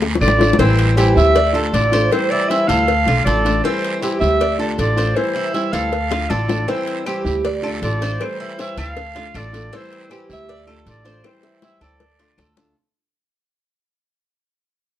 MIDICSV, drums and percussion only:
0, 0, Header, 1, 2, 480
1, 0, Start_track
1, 0, Tempo, 379987
1, 753, Time_signature, 4, 2, 24, 8
1, 18935, End_track
2, 0, Start_track
2, 0, Title_t, "Drums"
2, 27, Note_on_c, 9, 60, 91
2, 153, Note_off_c, 9, 60, 0
2, 194, Note_on_c, 9, 61, 74
2, 271, Note_on_c, 9, 73, 69
2, 273, Note_on_c, 9, 75, 64
2, 320, Note_off_c, 9, 61, 0
2, 352, Note_on_c, 9, 61, 87
2, 397, Note_off_c, 9, 73, 0
2, 400, Note_off_c, 9, 75, 0
2, 479, Note_off_c, 9, 61, 0
2, 517, Note_on_c, 9, 61, 80
2, 520, Note_on_c, 9, 73, 66
2, 643, Note_off_c, 9, 61, 0
2, 646, Note_off_c, 9, 73, 0
2, 673, Note_on_c, 9, 61, 82
2, 750, Note_on_c, 9, 56, 104
2, 761, Note_on_c, 9, 74, 73
2, 800, Note_off_c, 9, 61, 0
2, 877, Note_off_c, 9, 56, 0
2, 887, Note_off_c, 9, 74, 0
2, 994, Note_on_c, 9, 56, 74
2, 1120, Note_off_c, 9, 56, 0
2, 1236, Note_on_c, 9, 56, 68
2, 1241, Note_on_c, 9, 73, 75
2, 1362, Note_off_c, 9, 56, 0
2, 1367, Note_off_c, 9, 73, 0
2, 1479, Note_on_c, 9, 73, 80
2, 1605, Note_off_c, 9, 73, 0
2, 1712, Note_on_c, 9, 56, 108
2, 1712, Note_on_c, 9, 74, 69
2, 1838, Note_off_c, 9, 56, 0
2, 1838, Note_off_c, 9, 74, 0
2, 2195, Note_on_c, 9, 73, 65
2, 2200, Note_on_c, 9, 56, 73
2, 2321, Note_off_c, 9, 73, 0
2, 2326, Note_off_c, 9, 56, 0
2, 2435, Note_on_c, 9, 73, 70
2, 2440, Note_on_c, 9, 56, 72
2, 2561, Note_off_c, 9, 73, 0
2, 2566, Note_off_c, 9, 56, 0
2, 2669, Note_on_c, 9, 74, 76
2, 2683, Note_on_c, 9, 56, 112
2, 2795, Note_off_c, 9, 74, 0
2, 2809, Note_off_c, 9, 56, 0
2, 3162, Note_on_c, 9, 73, 76
2, 3166, Note_on_c, 9, 56, 70
2, 3288, Note_off_c, 9, 73, 0
2, 3292, Note_off_c, 9, 56, 0
2, 3396, Note_on_c, 9, 73, 77
2, 3405, Note_on_c, 9, 56, 74
2, 3522, Note_off_c, 9, 73, 0
2, 3532, Note_off_c, 9, 56, 0
2, 3640, Note_on_c, 9, 74, 72
2, 3643, Note_on_c, 9, 56, 103
2, 3767, Note_off_c, 9, 74, 0
2, 3769, Note_off_c, 9, 56, 0
2, 3889, Note_on_c, 9, 56, 76
2, 4015, Note_off_c, 9, 56, 0
2, 4122, Note_on_c, 9, 73, 73
2, 4129, Note_on_c, 9, 56, 76
2, 4248, Note_off_c, 9, 73, 0
2, 4255, Note_off_c, 9, 56, 0
2, 4360, Note_on_c, 9, 73, 72
2, 4367, Note_on_c, 9, 56, 70
2, 4487, Note_off_c, 9, 73, 0
2, 4494, Note_off_c, 9, 56, 0
2, 4596, Note_on_c, 9, 74, 74
2, 4610, Note_on_c, 9, 56, 109
2, 4722, Note_off_c, 9, 74, 0
2, 4736, Note_off_c, 9, 56, 0
2, 4855, Note_on_c, 9, 56, 74
2, 4981, Note_off_c, 9, 56, 0
2, 5084, Note_on_c, 9, 73, 78
2, 5093, Note_on_c, 9, 56, 69
2, 5210, Note_off_c, 9, 73, 0
2, 5220, Note_off_c, 9, 56, 0
2, 5321, Note_on_c, 9, 73, 76
2, 5448, Note_off_c, 9, 73, 0
2, 5567, Note_on_c, 9, 74, 72
2, 5571, Note_on_c, 9, 56, 110
2, 5694, Note_off_c, 9, 74, 0
2, 5698, Note_off_c, 9, 56, 0
2, 6040, Note_on_c, 9, 73, 75
2, 6050, Note_on_c, 9, 56, 73
2, 6166, Note_off_c, 9, 73, 0
2, 6176, Note_off_c, 9, 56, 0
2, 6284, Note_on_c, 9, 73, 71
2, 6292, Note_on_c, 9, 56, 71
2, 6410, Note_off_c, 9, 73, 0
2, 6418, Note_off_c, 9, 56, 0
2, 6522, Note_on_c, 9, 74, 72
2, 6526, Note_on_c, 9, 56, 103
2, 6648, Note_off_c, 9, 74, 0
2, 6653, Note_off_c, 9, 56, 0
2, 7004, Note_on_c, 9, 73, 79
2, 7007, Note_on_c, 9, 56, 66
2, 7130, Note_off_c, 9, 73, 0
2, 7134, Note_off_c, 9, 56, 0
2, 7249, Note_on_c, 9, 73, 80
2, 7250, Note_on_c, 9, 56, 72
2, 7375, Note_off_c, 9, 73, 0
2, 7376, Note_off_c, 9, 56, 0
2, 7483, Note_on_c, 9, 74, 72
2, 7490, Note_on_c, 9, 56, 104
2, 7609, Note_off_c, 9, 74, 0
2, 7616, Note_off_c, 9, 56, 0
2, 7728, Note_on_c, 9, 56, 80
2, 7728, Note_on_c, 9, 60, 112
2, 7854, Note_off_c, 9, 56, 0
2, 7854, Note_off_c, 9, 60, 0
2, 7960, Note_on_c, 9, 73, 72
2, 7969, Note_on_c, 9, 56, 71
2, 7969, Note_on_c, 9, 61, 84
2, 8087, Note_off_c, 9, 73, 0
2, 8095, Note_off_c, 9, 56, 0
2, 8095, Note_off_c, 9, 61, 0
2, 8203, Note_on_c, 9, 73, 75
2, 8206, Note_on_c, 9, 56, 66
2, 8206, Note_on_c, 9, 61, 93
2, 8330, Note_off_c, 9, 73, 0
2, 8332, Note_off_c, 9, 56, 0
2, 8332, Note_off_c, 9, 61, 0
2, 8442, Note_on_c, 9, 74, 71
2, 8447, Note_on_c, 9, 56, 116
2, 8568, Note_off_c, 9, 74, 0
2, 8573, Note_off_c, 9, 56, 0
2, 8686, Note_on_c, 9, 56, 77
2, 8812, Note_off_c, 9, 56, 0
2, 8925, Note_on_c, 9, 75, 70
2, 8927, Note_on_c, 9, 56, 71
2, 8929, Note_on_c, 9, 73, 77
2, 9051, Note_off_c, 9, 75, 0
2, 9053, Note_off_c, 9, 56, 0
2, 9055, Note_off_c, 9, 73, 0
2, 9173, Note_on_c, 9, 73, 73
2, 9299, Note_off_c, 9, 73, 0
2, 9408, Note_on_c, 9, 56, 107
2, 9410, Note_on_c, 9, 74, 75
2, 9534, Note_off_c, 9, 56, 0
2, 9537, Note_off_c, 9, 74, 0
2, 9650, Note_on_c, 9, 75, 68
2, 9776, Note_off_c, 9, 75, 0
2, 9887, Note_on_c, 9, 56, 73
2, 9888, Note_on_c, 9, 73, 74
2, 10014, Note_off_c, 9, 56, 0
2, 10014, Note_off_c, 9, 73, 0
2, 10130, Note_on_c, 9, 56, 76
2, 10134, Note_on_c, 9, 73, 78
2, 10256, Note_off_c, 9, 56, 0
2, 10261, Note_off_c, 9, 73, 0
2, 10364, Note_on_c, 9, 56, 100
2, 10373, Note_on_c, 9, 74, 69
2, 10376, Note_on_c, 9, 75, 69
2, 10490, Note_off_c, 9, 56, 0
2, 10499, Note_off_c, 9, 74, 0
2, 10502, Note_off_c, 9, 75, 0
2, 10847, Note_on_c, 9, 56, 68
2, 10852, Note_on_c, 9, 73, 77
2, 10974, Note_off_c, 9, 56, 0
2, 10979, Note_off_c, 9, 73, 0
2, 11085, Note_on_c, 9, 73, 77
2, 11086, Note_on_c, 9, 56, 73
2, 11096, Note_on_c, 9, 75, 72
2, 11211, Note_off_c, 9, 73, 0
2, 11212, Note_off_c, 9, 56, 0
2, 11222, Note_off_c, 9, 75, 0
2, 11328, Note_on_c, 9, 74, 73
2, 11330, Note_on_c, 9, 56, 106
2, 11455, Note_off_c, 9, 74, 0
2, 11456, Note_off_c, 9, 56, 0
2, 11570, Note_on_c, 9, 56, 77
2, 11697, Note_off_c, 9, 56, 0
2, 11803, Note_on_c, 9, 73, 72
2, 11810, Note_on_c, 9, 75, 68
2, 11814, Note_on_c, 9, 56, 77
2, 11929, Note_off_c, 9, 73, 0
2, 11936, Note_off_c, 9, 75, 0
2, 11940, Note_off_c, 9, 56, 0
2, 12048, Note_on_c, 9, 73, 67
2, 12052, Note_on_c, 9, 56, 72
2, 12174, Note_off_c, 9, 73, 0
2, 12179, Note_off_c, 9, 56, 0
2, 12293, Note_on_c, 9, 74, 71
2, 12295, Note_on_c, 9, 56, 110
2, 12420, Note_off_c, 9, 74, 0
2, 12421, Note_off_c, 9, 56, 0
2, 12540, Note_on_c, 9, 56, 76
2, 12666, Note_off_c, 9, 56, 0
2, 12770, Note_on_c, 9, 73, 74
2, 12771, Note_on_c, 9, 56, 66
2, 12772, Note_on_c, 9, 75, 69
2, 12896, Note_off_c, 9, 73, 0
2, 12897, Note_off_c, 9, 56, 0
2, 12899, Note_off_c, 9, 75, 0
2, 13007, Note_on_c, 9, 73, 79
2, 13134, Note_off_c, 9, 73, 0
2, 13243, Note_on_c, 9, 74, 70
2, 13252, Note_on_c, 9, 56, 109
2, 13370, Note_off_c, 9, 74, 0
2, 13378, Note_off_c, 9, 56, 0
2, 13483, Note_on_c, 9, 75, 73
2, 13610, Note_off_c, 9, 75, 0
2, 13727, Note_on_c, 9, 56, 70
2, 13728, Note_on_c, 9, 73, 72
2, 13853, Note_off_c, 9, 56, 0
2, 13855, Note_off_c, 9, 73, 0
2, 13960, Note_on_c, 9, 73, 72
2, 13968, Note_on_c, 9, 56, 69
2, 14086, Note_off_c, 9, 73, 0
2, 14094, Note_off_c, 9, 56, 0
2, 14198, Note_on_c, 9, 75, 71
2, 14204, Note_on_c, 9, 56, 111
2, 14204, Note_on_c, 9, 60, 88
2, 14206, Note_on_c, 9, 74, 74
2, 14324, Note_off_c, 9, 75, 0
2, 14330, Note_off_c, 9, 56, 0
2, 14330, Note_off_c, 9, 60, 0
2, 14333, Note_off_c, 9, 74, 0
2, 14440, Note_on_c, 9, 60, 87
2, 14566, Note_off_c, 9, 60, 0
2, 14681, Note_on_c, 9, 56, 72
2, 14681, Note_on_c, 9, 61, 97
2, 14685, Note_on_c, 9, 73, 82
2, 14807, Note_off_c, 9, 56, 0
2, 14807, Note_off_c, 9, 61, 0
2, 14812, Note_off_c, 9, 73, 0
2, 14923, Note_on_c, 9, 56, 71
2, 14923, Note_on_c, 9, 75, 68
2, 14924, Note_on_c, 9, 73, 76
2, 15049, Note_off_c, 9, 56, 0
2, 15050, Note_off_c, 9, 75, 0
2, 15051, Note_off_c, 9, 73, 0
2, 15160, Note_on_c, 9, 56, 111
2, 15160, Note_on_c, 9, 61, 82
2, 15162, Note_on_c, 9, 74, 70
2, 15286, Note_off_c, 9, 56, 0
2, 15286, Note_off_c, 9, 61, 0
2, 15289, Note_off_c, 9, 74, 0
2, 15404, Note_on_c, 9, 56, 79
2, 15530, Note_off_c, 9, 56, 0
2, 15636, Note_on_c, 9, 75, 67
2, 15641, Note_on_c, 9, 73, 71
2, 15646, Note_on_c, 9, 56, 67
2, 15646, Note_on_c, 9, 61, 82
2, 15762, Note_off_c, 9, 75, 0
2, 15768, Note_off_c, 9, 73, 0
2, 15773, Note_off_c, 9, 56, 0
2, 15773, Note_off_c, 9, 61, 0
2, 15880, Note_on_c, 9, 56, 70
2, 15880, Note_on_c, 9, 61, 98
2, 15888, Note_on_c, 9, 73, 73
2, 16006, Note_off_c, 9, 56, 0
2, 16006, Note_off_c, 9, 61, 0
2, 16014, Note_off_c, 9, 73, 0
2, 18935, End_track
0, 0, End_of_file